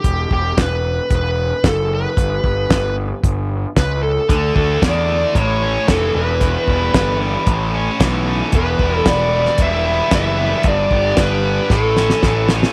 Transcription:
Already playing: G4
0.04 E1, kick, closed hi-hat
0.31 E1 G4, kick
0.57 E1 B4, kick, snare, closed hi-hat
1.10 E1, kick, closed hi-hat
1.16 B4
1.64 F#1, kick, snare, closed hi-hat
1.68 A4
1.95 B4
2.17 G1, kick, closed hi-hat
2.44 G1, kick
2.70 G1, kick, snare, closed hi-hat
3.23 G1, kick, closed hi-hat
3.76 C#2 B4, kick, snare, closed hi-hat
4.03 A4
4.29 D2 D3, kick, closed hi-hat
4.56 D2 A3 F#4 A4, kick
4.82 E2 D3 D4 D5, kick, snare, closed hi-hat
5.08 D3 A3
5.35 A1 A2 C#5, kick, closed hi-hat
5.63 C#4
5.88 F1 E3 A4, kick, snare, closed hi-hat
6.15 E1 E2 B4
6.41 E2, kick, closed hi-hat
6.67 E1 G3 E4, kick
6.94 G1 E3 B3, kick, snare, closed hi-hat
7.19 E3 G3
7.47 A1 A2, kick, closed hi-hat
7.75 C#4
8.00 B1 E3, kick, snare, closed hi-hat
8.26 A3 C#4
8.52 E1 E2 B4, kick, closed hi-hat
8.79 E1 G3 E4, kick
8.98 A4
9.06 E1 E3 B3 D5, kick, snare, closed hi-hat
9.31 E3 G3
9.46 snare
9.58 E1 G3 E4, kick, closed hi-hat
9.62 E5
9.86 B3
10.11 F#1 E3 E5, kick, snare, closed hi-hat
10.39 G3 B3
10.63 G1 G2, kick, closed hi-hat
10.68 D5
10.91 G1 B3 G4, kick
11.17 G1 G3 D4 B4, kick, snare, closed hi-hat
11.45 G3 B3
11.70 A1 A2 A4, kick, snare
11.96 C#4, snare
12.10 snare
12.22 A1 E3, kick, snare
12.49 A3 C#4, snare
12.63 snare

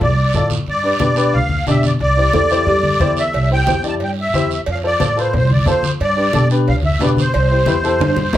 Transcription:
0.00 C2 D5, high conga, low conga, long guiro
0.33 A2 F4 A4 D5, high conga, low conga, short guiro
0.50 high conga, short guiro
0.66 G2 D5, high conga, long guiro
0.83 D4 G4 B4
0.99 B2 D4 G4 B4, high conga, short guiro
1.15 D4 G4 B4, short guiro
1.33 D2 F5, high conga, long guiro
1.49 high conga
1.67 B2 D4 G4 D5 E5, high conga, short guiro
1.83 D5, high conga, short guiro
1.99 C2 D5, high conga, long guiro
2.17 E4 G4 C5
2.32 E2 E4 G4 A4 C5, high conga, short guiro
2.50 E4 G4 C5, short guiro
2.66 G2 G4, high conga, low conga, long guiro
2.83 high conga
3.00 E2 E4 G4 C5, high conga, low conga, short guiro
3.17 E5, short guiro
3.33 C2, cowbell, high conga, long guiro
3.51 E4 G4 C5 G5
3.67 E4 G4 C5, high conga, short guiro
3.83 E4 G4 D5, short guiro
3.88 A5
4.00 G2 G5, cowbell, high conga, long guiro
4.21 E5
4.34 E2 E4 G4 C5, high conga, short guiro
4.51 E5, short guiro
4.66 F2, cowbell, high conga, long guiro
4.72 F5
4.83 F4 A4 C5 D5
4.99 A2 F4 A4 C5, high conga, short guiro
5.16 F4 A4 B4 C5, short guiro
5.33 C2 C5, cowbell, high conga, low conga, long guiro
5.50 D5, high conga
5.66 F2 F4 A4 C5, high conga, low conga, short guiro
5.83 high conga, short guiro
6.00 G2 D5, cowbell, high conga, long guiro
6.17 D4 G4 B4
6.33 B2 D4 G4 A4, high conga, short guiro
6.50 D4 G4 B4, short guiro
6.67 D2 F5, cowbell, high conga, long guiro
6.82 E5, high conga
6.99 B2 D4 G4 B4 D5, high conga, low timbale, short guiro
7.17 C5, high conga, short guiro
7.33 C2, cowbell, high conga, long guiro
7.51 E4 G4 C5
7.66 E2 E4 G4 B4, high conga, short guiro
7.84 E4 G4 A4, short guiro
8.00 G2, cowbell, high conga, high timbale, long guiro
8.16 high conga
8.33 E2 E4, low conga, low timbale, short guiro

